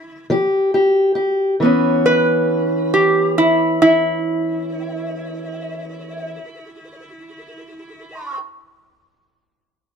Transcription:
Already playing: resonator guitar played with a steel bar E4
0.30 steel-string acoustic guitar F3 G4
0.74 steel-string acoustic guitar G4
1.15 steel-string acoustic guitar G4
1.60 steel-string acoustic guitar E3 B3
1.65 steel-string acoustic guitar C#4
2.06 resonator guitar played with a steel bar B4
2.94 resonator guitar played with a steel bar G4
3.38 resonator guitar played with a steel bar E4
3.82 resonator guitar played with a steel bar E4

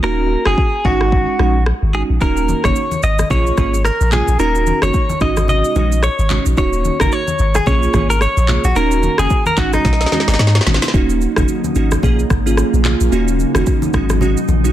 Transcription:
0.03 sub bass D#1, synth keys A#3 C#4 D#4 F#4, clean electric guitar A#4
0.46 sub bass F#1, synth keys A#3 C#4 D#4 F#4, clean electric guitar G#4, cross-stick
0.58 kick
0.85 sub bass G#1, synth keys G#3 C#4 D#4 F#4, clean electric guitar F#4, kick
1.01 cross-stick
1.12 kick
1.39 sub bass A#1, synth keys G#3 C#4 D#4 F#4, cross-stick
1.66 cross-stick
1.82 sub bass G#1
1.94 synth keys G#3 C#4 D#4 F#4, clean electric guitar G#4
2.10 sub bass A#1
2.21 sub bass D#1, synth keys A#3 C#4 D#4 F#4, clean electric guitar A#4, kick, shaker
2.37 shaker
2.49 high conga, shaker
2.64 sub bass F#1, synth keys A#3 C#4 D#4 F#4, clean electric guitar C#5, kick, cross-stick, high conga, shaker
2.76 shaker
2.91 high conga, shaker
3.03 sub bass G#1, clean electric guitar D#5, shaker
3.19 cross-stick, high conga, shaker
3.30 sub bass A#1, synth keys A#3 C#4 F4 G#4, clean electric guitar C#5, kick, low conga, shaker
3.47 shaker
3.57 sub bass G#1, synth keys A#3 C#4 F4 G#4, kick, cross-stick, high conga, shaker
3.74 shaker
3.85 clean electric guitar A#4, cross-stick, shaker
4.01 sub bass A#1, shaker
4.12 synth keys A#3 C#4 F4 G#4, clean electric guitar G#4, clap, high conga, low conga, shaker
4.28 sub bass A#1, shaker
4.39 sub bass D#1, synth keys A#3 C#4 D#4 F#4, clean electric guitar A#4, shaker
4.55 shaker
4.67 high conga, shaker
4.82 sub bass F#1, synth keys A#3 C#4 D#4 F#4, clean electric guitar C#5, cross-stick, high conga, shaker
4.94 kick, shaker
5.09 high conga, shaker
5.21 sub bass G#1, synth keys G#3 C#4 D#4 F#4, clean electric guitar D#5, kick, cross-stick, shaker
5.37 cross-stick, high conga, shaker
5.48 clean electric guitar D#5, low conga, shaker
5.64 shaker
5.75 sub bass A#1, synth keys G#3 C#4 D#4 F#4, high conga, shaker
5.92 shaker
6.03 clean electric guitar C#5, cross-stick, shaker
6.19 sub bass G#1, shaker
6.30 synth keys G#3 C#4 D#4 F#4, clap, high conga, low conga, shaker
6.46 sub bass A#1, shaker
6.57 sub bass D#1, synth keys A#3 C#4 D#4 F#4, clean electric guitar C#5, kick, shaker
6.73 shaker
6.85 high conga, shaker
7.00 sub bass F#1, synth keys A#3 C#4 D#4 F#4, clean electric guitar A#4, kick, cross-stick, high conga, shaker
7.12 clean electric guitar C#5, shaker
7.28 high conga, shaker
7.39 sub bass G#1, shaker
7.55 clean electric guitar G#4, cross-stick, high conga, shaker
7.66 sub bass A#1, synth keys A#3 C#4 F4 G#4, clean electric guitar C#5, kick, low conga, shaker
7.83 shaker
7.94 sub bass G#1, synth keys A#3 C#4 F4 G#4, kick, cross-stick, high conga, shaker
8.10 clean electric guitar A#4, shaker
8.21 clean electric guitar C#5, cross-stick, shaker
8.37 sub bass A#1, shaker
8.48 synth keys A#3 C#4 F4 G#4, clap, high conga, low conga, shaker
8.64 sub bass A#1, clean electric guitar F#4, shaker
8.76 sub bass D#1, synth keys A#3 C#4 D#4 F#4, clean electric guitar A#4, shaker
8.91 shaker
9.03 high conga, shaker
9.18 sub bass F#1, synth keys A#3 C#4 D#4 F#4, clean electric guitar G#4, cross-stick, high conga, shaker
9.30 kick, shaker
9.46 clean electric guitar A#4, high conga, shaker
9.57 sub bass G#1, synth keys G#3 C#4 D#4 F#4, clean electric guitar F#4, kick, clap, shaker
9.73 clean electric guitar D#4, cross-stick, high conga, shaker
9.84 sub bass A#1, kick, snare, low conga, shaker
9.93 snare
10.01 snare, shaker
10.06 snare
10.12 synth keys G#3 C#4 D#4 F#4, snare, high conga, shaker
10.20 snare
10.28 sub bass G#1, snare, shaker
10.34 snare
10.39 sub bass G#2, snare, shaker
10.47 snare
10.55 snare, shaker
10.61 snare
10.66 sub bass G#1, synth keys G#3 C#4 D#4 F#4, snare, high conga, low conga, shaker
10.74 snare
10.82 snare, shaker
10.88 snare
10.94 sub bass D#1, ambient pad C#3 A#3, synth keys A#3 C#4 D#4 F#4, kick, shaker
11.10 shaker
11.21 shaker
11.36 sub bass F#1, synth keys A#3 C#4 D#4 F#4, kick, cross-stick, high conga, shaker
11.48 shaker
11.64 high conga, shaker
11.75 sub bass G#1, synth keys A#3 C#4 D#4 F#4, shaker
11.92 cross-stick, high conga, shaker
12.03 sub bass A#1, synth keys A#3 C#4 F4 G#4, kick, low conga, shaker
12.19 shaker
12.30 sub bass G#1, kick, cross-stick, high conga, shaker
12.46 synth keys A#3 C#4 F4 G#4, shaker
12.57 cross-stick, shaker
12.73 sub bass A#1, shaker
12.85 synth keys A#3 C#4 F4 G#4, clap, high conga, low conga, shaker
13.01 sub bass A#1, shaker
13.12 sub bass D#1, ambient pad F#3 D#4, synth keys A#3 C#4 D#4 F#4, shaker
13.28 shaker
13.40 shaker
13.55 sub bass F#1, synth keys A#3 C#4 D#4 F#4, cross-stick, high conga, shaker
13.67 kick, shaker
13.82 high conga, shaker
13.93 sub bass G#1, synth keys G#3 C#4 D#4 F#4, kick, cross-stick, shaker
14.10 cross-stick, high conga, shaker
14.21 synth keys G#3 C#4 D#4 F#4, low conga, shaker
14.37 shaker
14.48 sub bass A#1, high conga, shaker
14.64 synth keys G#3 C#4 D#4 F#4, shaker

